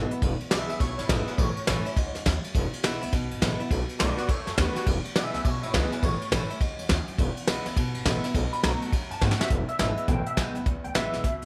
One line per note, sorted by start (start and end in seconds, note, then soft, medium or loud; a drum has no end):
0.00 0.20 B2 medium
0.00 0.11 E3 medium
0.00 0.11 G#3 medium
0.00 0.12 B3 medium
0.00 0.10 E4 medium
0.11 0.23 B3 soft
0.11 0.22 E4 medium
0.11 muted upright bass stroke medium
0.11 closed hi-hat medium
0.22 0.35 E1 medium
0.22 0.78 E2 medium
0.22 kick loud
0.22 ride medium
0.40 muted upright bass stroke medium
0.40 ride medium
0.51 0.64 B1 medium
0.51 0.69 E3 medium
0.51 0.69 G#3 medium
0.51 0.70 B3 loud
0.51 0.69 E4 loud
0.51 0.67 G#4 medium
0.51 0.67 E5 medium
0.51 snare loud
0.51 ride medium
0.68 0.77 C#2 medium
0.68 0.81 B3 medium
0.68 0.80 E4 medium
0.68 0.79 G#4 medium
0.68 0.79 E5 medium
0.68 ride medium
0.79 0.93 B1 medium
0.79 1.36 B2 medium
0.79 0.97 E4 medium
0.79 0.97 C#5 medium
0.79 kick loud
0.79 ride medium
0.98 1.06 G#1 medium
0.98 1.08 E4 medium
0.98 1.09 C#5 medium
0.98 snare soft
0.98 ride medium
1.08 1.22 G#1 medium
1.08 1.27 E3 medium
1.08 1.27 G#3 medium
1.08 1.28 B3 medium
1.08 1.26 E4 medium
1.08 1.27 G#4 medium
1.08 1.27 B4 loud
1.08 kick medium
1.08 snare loud
1.08 ride medium
1.27 1.39 B3 medium
1.27 1.38 E4 medium
1.27 1.38 G#4 medium
1.27 1.38 B4 medium
1.27 muted upright bass stroke medium
1.27 ride medium
1.38 1.51 A1 loud
1.38 1.95 A2 medium
1.38 2.23 C#5 loud
1.38 kick loud
1.38 ride medium
1.57 muted upright bass stroke medium
1.57 ride medium
1.67 1.80 A1 medium
1.67 1.85 E3 loud
1.67 1.85 A3 medium
1.67 1.86 C#4 medium
1.67 1.84 E4 medium
1.67 snare loud
1.67 ride medium
1.85 1.97 C#4 soft
1.85 1.96 E4 medium
1.85 muted upright bass stroke medium
1.85 ride medium
1.96 2.09 C#2 medium
1.96 2.25 G#2 medium
1.96 kick loud
1.96 snare soft
1.96 ride medium
2.15 2.22 E2 medium
2.15 snare soft
2.15 ride medium
2.26 2.38 D#2 medium
2.26 2.54 F#2 medium
2.26 kick medium
2.26 snare loud
2.26 ride medium
2.44 ride medium
2.55 2.67 E1 loud
2.55 3.11 E2 medium
2.55 kick loud
2.55 ride medium
2.73 muted upright bass stroke medium
2.73 ride medium
2.83 2.96 B1 medium
2.83 3.01 E3 medium
2.83 3.02 G#3 medium
2.83 3.02 B3 medium
2.83 3.00 E4 loud
2.83 snare loud
2.83 ride medium
3.01 3.10 C#2 medium
3.01 3.13 B3 medium
3.01 3.12 E4 medium
3.01 ride medium
3.12 3.25 B1 medium
3.12 3.69 B2 medium
3.12 kick loud
3.12 snare soft
3.12 ride medium
3.31 3.39 G#1 medium
3.31 ride medium
3.42 3.54 A1 medium
3.42 3.59 E3 medium
3.42 3.60 G#3 medium
3.42 3.60 B3 loud
3.42 3.59 E4 medium
3.42 kick medium
3.42 snare loud
3.42 ride medium
3.60 3.71 B3 soft
3.60 3.70 E4 medium
3.60 muted upright bass stroke medium
3.60 ride medium
3.71 3.83 B1 loud
3.71 4.27 B2 medium
3.71 kick loud
3.71 ride medium
3.89 muted upright bass stroke medium
3.89 ride medium
3.99 4.13 B1 medium
3.99 4.17 D#3 medium
3.99 4.18 A3 medium
3.99 4.18 B3 medium
3.99 4.16 F#4 loud
3.99 4.16 B4 medium
3.99 4.17 D5 medium
3.99 snare loud
3.99 ride medium
4.17 4.29 B3 medium
4.17 4.28 F#4 medium
4.17 4.28 B4 medium
4.17 4.28 D5 medium
4.17 muted upright bass stroke medium
4.17 snare soft
4.17 ride medium
4.28 4.41 D#2 medium
4.28 4.85 F#2 medium
4.28 4.45 A4 medium
4.28 4.46 C#5 medium
4.28 kick loud
4.28 ride medium
4.46 4.54 F#2 medium
4.46 4.58 A4 medium
4.46 4.59 C#5 medium
4.46 snare soft
4.46 ride medium
4.57 4.70 D#2 medium
4.57 4.75 D#3 medium
4.57 4.76 A3 medium
4.57 4.76 B3 medium
4.57 4.74 F#4 loud
4.57 4.75 G4 medium
4.57 4.75 B4 medium
4.57 kick medium
4.57 snare loud
4.57 ride medium
4.75 4.87 B3 medium
4.75 4.86 F#4 medium
4.75 4.86 G4 medium
4.75 4.87 B4 medium
4.75 muted upright bass stroke medium
4.75 snare soft
4.75 ride medium
4.87 4.99 E1 medium
4.87 5.43 E2 medium
4.87 kick loud
4.87 ride medium
5.05 muted upright bass stroke medium
5.05 ride medium
5.16 5.28 B1 medium
5.16 5.33 E3 medium
5.16 5.34 G#3 medium
5.16 5.34 B3 medium
5.16 5.33 E4 loud
5.16 5.33 G#4 medium
5.16 5.33 E5 medium
5.16 snare loud
5.16 ride medium
5.34 5.41 C#2 medium
5.34 5.45 B3 medium
5.34 5.44 E4 medium
5.34 5.44 G#4 medium
5.34 5.45 E5 medium
5.34 snare soft
5.34 ride medium
5.44 5.57 B1 medium
5.44 6.01 B2 medium
5.44 5.61 E4 medium
5.44 5.62 C#5 medium
5.44 kick loud
5.44 ride medium
5.63 5.70 G#1 medium
5.63 5.73 E4 medium
5.63 5.74 C#5 medium
5.63 ride medium
5.73 5.86 C#2 medium
5.73 5.91 E3 medium
5.73 5.92 G#3 medium
5.73 5.92 B3 medium
5.73 5.91 E4 loud
5.73 5.90 G#4 medium
5.73 5.91 B4 medium
5.73 kick medium
5.73 snare loud
5.73 ride medium
5.91 6.04 B3 soft
5.91 6.02 E4 medium
5.91 6.02 G#4 medium
5.91 6.03 B4 medium
5.91 snare soft
5.91 ride medium
6.03 6.15 A1 medium
6.03 6.59 A2 medium
6.03 6.87 C#5 loud
6.03 kick loud
6.03 ride medium
6.21 ride medium
6.31 6.44 A1 medium
6.31 6.49 E3 medium
6.31 6.50 A3 loud
6.31 6.50 C#4 loud
6.31 6.49 E4 loud
6.31 snare loud
6.31 ride medium
6.50 6.61 C#4 medium
6.50 6.60 E4 medium
6.50 muted upright bass stroke medium
6.50 ride medium
6.61 6.73 C#2 medium
6.61 6.89 G#2 medium
6.61 kick loud
6.61 ride medium
6.79 6.86 E2 medium
6.79 ride medium
6.89 7.02 D#2 medium
6.89 7.18 F#2 medium
6.89 kick medium
6.89 snare loud
6.89 ride medium
7.08 muted upright bass stroke medium
7.08 ride medium
7.18 7.31 E1 loud
7.18 7.75 E2 medium
7.18 kick loud
7.18 ride medium
7.36 muted upright bass stroke medium
7.36 ride medium
7.47 7.60 B1 medium
7.47 7.65 E3 medium
7.47 7.66 G#3 medium
7.47 7.66 B3 medium
7.47 7.65 E4 loud
7.47 snare loud
7.47 ride medium
7.65 7.73 C#2 medium
7.65 7.77 B3 medium
7.65 7.76 E4 medium
7.65 snare soft
7.65 ride medium
7.76 7.89 B1 medium
7.76 8.33 B2 medium
7.76 kick loud
7.76 snare soft
7.76 ride medium
7.94 8.02 G#1 medium
7.94 ride medium
8.05 8.18 A1 medium
8.05 8.23 E3 medium
8.05 8.24 G#3 medium
8.05 8.24 B3 medium
8.05 8.23 E4 loud
8.05 kick medium
8.05 snare loud
8.05 ride medium
8.24 8.35 B3 soft
8.24 8.34 E4 medium
8.24 snare soft
8.24 ride medium
8.35 8.47 B1 loud
8.35 8.91 B2 medium
8.35 kick loud
8.35 ride medium
8.52 8.64 B5 medium
8.52 muted upright bass stroke medium
8.52 ride medium
8.63 8.76 B1 medium
8.63 8.91 D#3 medium
8.63 8.92 A3 medium
8.63 8.92 B3 loud
8.63 8.92 F#4 loud
8.63 8.82 A#5 loud
8.63 snare loud
8.63 ride medium
8.81 8.93 A5 medium
8.81 muted upright bass stroke medium
8.81 ride medium
8.92 9.05 D#2 medium
8.92 9.49 F#2 medium
8.92 9.11 G5 loud
8.92 kick loud
8.92 ride medium
9.10 9.18 F#2 medium
9.10 9.21 A5 medium
9.10 ride medium
9.21 9.34 G#2 medium
9.21 9.39 D#3 medium
9.21 9.39 A3 loud
9.21 9.40 B3 medium
9.21 9.38 F#4 medium
9.21 9.40 G5 medium
9.21 kick medium
9.21 snare medium
9.31 snare medium
9.39 9.51 B3 medium
9.39 9.50 F#4 medium
9.39 9.51 E5 loud
9.39 muted upright bass stroke medium
9.39 snare loud
9.50 9.67 E1 medium
9.50 10.06 E2 medium
9.50 kick loud
9.50 closed hi-hat medium
9.68 10.07 E5 medium
9.68 muted upright bass stroke medium
9.68 closed hi-hat medium
9.79 9.95 G#1 medium
9.79 10.07 E3 medium
9.79 10.08 G#3 medium
9.79 10.08 B3 medium
9.79 10.08 E4 medium
9.79 snare loud
9.79 closed hi-hat medium
9.97 muted upright bass stroke medium
9.97 closed hi-hat medium
10.08 10.25 A1 medium
10.08 10.64 B2 medium
10.08 10.26 G5 medium
10.08 kick loud
10.08 closed hi-hat medium
10.26 10.37 E5 medium
10.26 muted upright bass stroke medium
10.26 closed hi-hat medium
10.37 10.54 B1 medium
10.37 10.55 E3 medium
10.37 10.55 G#3 medium
10.37 10.55 B3 medium
10.37 10.54 E4 medium
10.37 10.55 G5 medium
10.37 kick medium
10.37 snare loud
10.37 closed hi-hat medium
10.55 10.65 C#2 medium
10.55 10.67 B3 soft
10.55 10.65 E4 medium
10.55 closed hi-hat medium
10.66 10.82 C#2 medium
10.66 11.22 E2 medium
10.66 kick loud
10.66 closed hi-hat medium
10.84 10.94 C#2 medium
10.84 10.94 G5 medium
10.84 closed hi-hat medium
10.95 11.11 A1 medium
10.95 11.23 E3 medium
10.95 11.23 G#3 loud
10.95 11.24 B3 medium
10.95 11.24 E4 medium
10.95 11.45 E5 medium
10.95 snare loud
10.95 closed hi-hat medium
11.13 11.23 B1 medium
11.13 snare soft
11.13 closed hi-hat medium
11.24 11.40 C#2 medium
11.24 11.45 B2 medium
11.24 kick loud
11.24 closed hi-hat medium